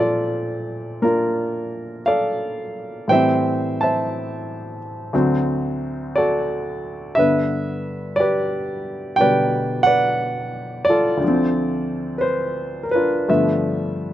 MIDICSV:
0, 0, Header, 1, 2, 480
1, 0, Start_track
1, 0, Key_signature, 1, "major"
1, 0, Tempo, 1030928
1, 1441, Time_signature, 4, 2, 24, 8
1, 1917, Tempo, 1015228
1, 5757, Tempo, 1048951
1, 6624, End_track
2, 0, Start_track
2, 0, Title_t, "Grand piano"
2, 0, Program_c, 0, 0
2, 0, Control_c, 0, 64, 127
2, 0, Note_on_c, 0, 46, 52
2, 0, Note_on_c, 0, 53, 41
2, 0, Note_on_c, 0, 60, 41
2, 0, Note_on_c, 0, 62, 57
2, 0, Note_on_c, 0, 65, 49
2, 0, Note_on_c, 0, 69, 59
2, 0, Note_on_c, 0, 72, 56
2, 0, Note_on_c, 0, 74, 68
2, 0, Note_on_c, 0, 76, 73
2, 1, Note_off_c, 0, 69, 0
2, 1, Note_on_c, 0, 69, 49
2, 466, Note_off_c, 0, 72, 0
2, 475, Note_on_c, 0, 58, 40
2, 476, Note_off_c, 0, 62, 0
2, 476, Note_on_c, 0, 70, 68
2, 479, Note_off_c, 0, 65, 0
2, 483, Note_on_c, 0, 62, 35
2, 486, Note_on_c, 0, 65, 51
2, 491, Note_off_c, 0, 74, 0
2, 941, Note_off_c, 0, 70, 0
2, 944, Note_off_c, 0, 69, 0
2, 959, Note_on_c, 0, 77, 74
2, 966, Note_on_c, 0, 74, 55
2, 968, Note_on_c, 0, 69, 56
2, 1425, Note_off_c, 0, 74, 0
2, 1426, Note_off_c, 0, 65, 0
2, 1426, Note_off_c, 0, 69, 0
2, 1433, Note_on_c, 0, 45, 44
2, 1434, Note_off_c, 0, 46, 0
2, 1438, Note_off_c, 0, 53, 0
2, 1439, Note_off_c, 0, 58, 0
2, 1440, Note_on_c, 0, 52, 41
2, 1440, Note_on_c, 0, 79, 85
2, 1442, Note_off_c, 0, 60, 0
2, 1443, Note_off_c, 0, 62, 0
2, 1446, Note_on_c, 0, 72, 56
2, 1448, Control_c, 0, 64, 0
2, 1448, Note_on_c, 0, 55, 39
2, 1450, Note_off_c, 0, 76, 0
2, 1454, Note_off_c, 0, 77, 0
2, 1454, Note_on_c, 0, 76, 60
2, 1458, Note_on_c, 0, 60, 51
2, 1519, Control_c, 0, 64, 127
2, 1772, Note_off_c, 0, 79, 0
2, 1773, Note_on_c, 0, 81, 69
2, 1776, Note_off_c, 0, 76, 0
2, 1779, Note_off_c, 0, 72, 0
2, 1783, Note_on_c, 0, 76, 53
2, 1786, Note_on_c, 0, 72, 46
2, 2227, Note_off_c, 0, 81, 0
2, 2387, Note_off_c, 0, 76, 0
2, 2389, Note_off_c, 0, 72, 0
2, 2392, Note_off_c, 0, 45, 0
2, 2396, Note_off_c, 0, 52, 0
2, 2396, Note_off_c, 0, 60, 0
2, 2396, Note_on_c, 0, 50, 47
2, 2397, Note_on_c, 0, 38, 53
2, 2400, Note_off_c, 0, 55, 0
2, 2402, Control_c, 0, 64, 0
2, 2402, Note_on_c, 0, 54, 47
2, 2403, Note_on_c, 0, 60, 59
2, 2488, Control_c, 0, 64, 127
2, 2881, Note_on_c, 0, 74, 75
2, 2889, Note_on_c, 0, 66, 51
2, 2892, Note_on_c, 0, 69, 57
2, 3349, Note_off_c, 0, 66, 0
2, 3350, Note_off_c, 0, 69, 0
2, 3351, Note_on_c, 0, 76, 83
2, 3355, Note_off_c, 0, 50, 0
2, 3360, Note_on_c, 0, 43, 51
2, 3362, Note_on_c, 0, 50, 44
2, 3363, Note_off_c, 0, 38, 0
2, 3365, Note_off_c, 0, 54, 0
2, 3366, Note_off_c, 0, 60, 0
2, 3368, Note_on_c, 0, 59, 53
2, 3369, Control_c, 0, 64, 0
2, 3370, Note_on_c, 0, 71, 61
2, 3378, Note_off_c, 0, 74, 0
2, 3453, Control_c, 0, 64, 127
2, 3828, Note_on_c, 0, 74, 79
2, 3840, Note_off_c, 0, 71, 0
2, 3847, Note_on_c, 0, 67, 54
2, 3848, Note_on_c, 0, 71, 56
2, 3850, Note_off_c, 0, 76, 0
2, 4302, Note_on_c, 0, 79, 92
2, 4305, Note_off_c, 0, 50, 0
2, 4312, Note_on_c, 0, 50, 37
2, 4316, Note_off_c, 0, 71, 0
2, 4317, Note_off_c, 0, 74, 0
2, 4319, Note_on_c, 0, 47, 35
2, 4323, Note_on_c, 0, 71, 65
2, 4324, Note_on_c, 0, 74, 69
2, 4326, Note_on_c, 0, 55, 44
2, 4615, Note_off_c, 0, 79, 0
2, 4618, Note_on_c, 0, 78, 96
2, 4627, Note_off_c, 0, 74, 0
2, 4630, Note_off_c, 0, 71, 0
2, 4634, Note_on_c, 0, 74, 63
2, 4637, Note_on_c, 0, 71, 57
2, 4782, Note_off_c, 0, 67, 0
2, 5091, Note_off_c, 0, 74, 0
2, 5098, Note_on_c, 0, 74, 91
2, 5120, Note_on_c, 0, 65, 55
2, 5123, Note_on_c, 0, 69, 57
2, 5125, Note_off_c, 0, 78, 0
2, 5251, Note_on_c, 0, 38, 52
2, 5255, Note_off_c, 0, 71, 0
2, 5261, Note_off_c, 0, 50, 0
2, 5268, Note_on_c, 0, 50, 49
2, 5276, Note_off_c, 0, 43, 0
2, 5278, Note_off_c, 0, 47, 0
2, 5280, Note_off_c, 0, 59, 0
2, 5281, Note_off_c, 0, 55, 0
2, 5282, Control_c, 0, 64, 0
2, 5283, Note_on_c, 0, 53, 46
2, 5302, Note_on_c, 0, 60, 57
2, 5367, Control_c, 0, 64, 127
2, 5707, Note_off_c, 0, 74, 0
2, 5730, Note_on_c, 0, 71, 49
2, 5743, Note_on_c, 0, 72, 66
2, 5755, Note_off_c, 0, 71, 0
2, 6029, Note_on_c, 0, 70, 45
2, 6037, Note_off_c, 0, 72, 0
2, 6061, Note_off_c, 0, 65, 0
2, 6062, Note_off_c, 0, 69, 0
2, 6066, Note_on_c, 0, 71, 69
2, 6076, Note_off_c, 0, 70, 0
2, 6083, Note_on_c, 0, 65, 49
2, 6084, Note_on_c, 0, 62, 50
2, 6223, Note_off_c, 0, 38, 0
2, 6229, Note_off_c, 0, 50, 0
2, 6229, Note_off_c, 0, 53, 0
2, 6235, Note_on_c, 0, 43, 53
2, 6235, Note_on_c, 0, 57, 43
2, 6236, Note_on_c, 0, 50, 46
2, 6236, Note_on_c, 0, 53, 45
2, 6239, Note_on_c, 0, 59, 47
2, 6240, Note_on_c, 0, 76, 58
2, 6242, Control_c, 0, 64, 0
2, 6247, Note_off_c, 0, 60, 0
2, 6316, Control_c, 0, 64, 127
2, 6624, Note_off_c, 0, 43, 0
2, 6624, Note_off_c, 0, 50, 0
2, 6624, Note_off_c, 0, 53, 0
2, 6624, Note_off_c, 0, 57, 0
2, 6624, Note_off_c, 0, 59, 0
2, 6624, Note_off_c, 0, 62, 0
2, 6624, Note_off_c, 0, 65, 0
2, 6624, Note_off_c, 0, 71, 0
2, 6624, Note_off_c, 0, 76, 0
2, 6624, End_track
0, 0, End_of_file